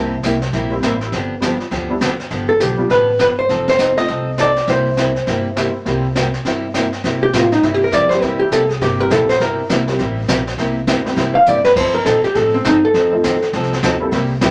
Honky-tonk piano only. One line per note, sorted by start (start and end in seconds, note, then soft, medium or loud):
0.71 1.10 G3 medium
0.71 1.10 A#3 medium
0.71 1.10 C4 medium
0.71 1.10 E4 medium
1.40 1.58 G3 medium
1.40 1.58 B3 medium
1.40 1.58 D4 medium
1.40 1.59 F4 medium
1.90 2.00 G3 medium
1.90 2.00 B3 medium
1.90 2.00 D4 medium
1.90 2.00 E4 medium
2.77 2.88 G3 medium
2.77 2.88 B3 medium
2.77 2.89 D4 medium
2.77 2.89 F4 medium
3.96 4.07 A3 medium
3.96 4.07 C4 medium
3.96 4.07 D#4 medium
3.96 4.08 F4 medium
5.55 5.72 A#3 medium
5.55 5.73 C4 medium
5.55 5.73 E4 medium
5.55 5.73 G4 medium
5.85 6.02 A#3 medium
5.85 6.02 C4 medium
5.85 6.03 E4 medium
5.85 6.03 G4 medium
8.11 8.49 G3 medium
8.11 8.49 A#3 medium
8.11 8.49 C4 medium
8.11 8.50 E4 medium
8.11 8.50 G4 medium
8.99 9.38 G3 medium
8.99 9.38 A#3 medium
8.99 9.38 C4 medium
8.99 9.38 E4 medium
8.99 9.39 G4 medium
9.87 9.98 G3 medium
9.87 9.98 A#3 medium
9.87 9.98 C4 medium
9.87 9.98 E4 medium
9.87 9.98 G4 medium
11.05 11.15 G3 medium
11.05 11.16 A#3 medium
11.05 11.16 C4 medium
11.05 11.16 E4 medium
11.05 11.16 G4 medium
13.12 13.22 F3 medium
13.12 13.22 A3 medium
13.12 13.23 C4 medium
13.12 13.23 D#4 medium
13.12 13.23 F4 medium
14.00 14.11 G3 medium
14.00 14.11 A#3 medium
14.00 14.11 C4 medium
14.00 14.11 E4 medium
14.00 14.12 A4 medium
14.41 14.51 G3 medium
14.41 14.51 A#3 medium
14.41 14.51 C4 medium
14.41 14.51 E4 medium
14.41 14.51 G4 medium